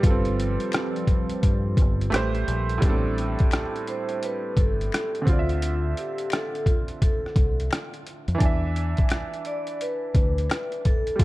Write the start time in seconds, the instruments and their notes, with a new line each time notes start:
Already playing: vibraphone B4
0.00 fingered electric bass G1, analog synth pad F3 G3 C4, upright piano G3 F4, kick, closed hi-hat
0.07 upright piano C4 A4
0.25 closed hi-hat
0.40 closed hi-hat
0.60 closed hi-hat
0.72 finger snap, cross-stick, closed hi-hat
0.96 closed hi-hat
1.07 kick, closed hi-hat
1.30 closed hi-hat
1.43 fingered electric bass G2, kick, closed hi-hat
1.77 fingered electric bass G1, kick, closed hi-hat
2.01 closed hi-hat
2.10 fingered electric bass A1, analog synth pad G3 A3, upright piano A3 G4 B4, finger snap, closed hi-hat
2.14 upright piano C5, cross-stick
2.35 closed hi-hat
2.48 fingered electric bass A#1, closed hi-hat
2.70 closed hi-hat
2.78 upright piano A2 G3
2.82 fingered electric bass A1, upright piano B3, kick, closed hi-hat
2.86 upright piano C4 D4 A4
3.18 closed hi-hat
3.39 kick, closed hi-hat
3.51 finger snap, cross-stick, closed hi-hat
3.76 closed hi-hat
3.87 vibraphone C5, closed hi-hat
4.09 closed hi-hat
4.23 vibraphone B4, closed hi-hat
4.57 fingered electric bass G1, vibraphone A4, kick, closed hi-hat
4.81 closed hi-hat
4.92 finger snap, cross-stick, closed hi-hat
5.15 closed hi-hat
5.22 upright piano D3 C4
5.27 fingered electric bass D2, upright piano F4, vibraphone F4, kick, closed hi-hat
5.33 upright piano D5
5.39 upright piano E5
5.49 closed hi-hat
5.62 closed hi-hat
5.97 vibraphone G4, closed hi-hat
6.18 closed hi-hat
6.30 finger snap, cross-stick, closed hi-hat
6.34 vibraphone A4
6.55 closed hi-hat
6.66 vibraphone F4, kick, closed hi-hat
6.88 closed hi-hat
7.02 vibraphone A4, kick, closed hi-hat
7.26 cross-stick
7.36 fingered electric bass C2, kick, closed hi-hat
7.60 closed hi-hat
7.71 finger snap, cross-stick, closed hi-hat
7.94 closed hi-hat
8.07 closed hi-hat
8.28 fingered electric bass F2, closed hi-hat
8.35 upright piano E3 D4
8.40 fingered electric bass E2, upright piano G#5, kick, closed hi-hat
8.46 upright piano E5
8.76 closed hi-hat
8.97 kick, closed hi-hat
9.09 finger snap, cross-stick, closed hi-hat
9.34 closed hi-hat
9.45 vibraphone D5, closed hi-hat
9.67 closed hi-hat
9.81 vibraphone B4, closed hi-hat
10.15 fingered electric bass D2, kick, closed hi-hat
10.38 closed hi-hat
10.50 finger snap, cross-stick, closed hi-hat
10.72 closed hi-hat
10.85 vibraphone A4, kick, closed hi-hat
11.07 closed hi-hat
11.16 upright piano G3 F4, kick
11.20 fingered electric bass G1, closed hi-hat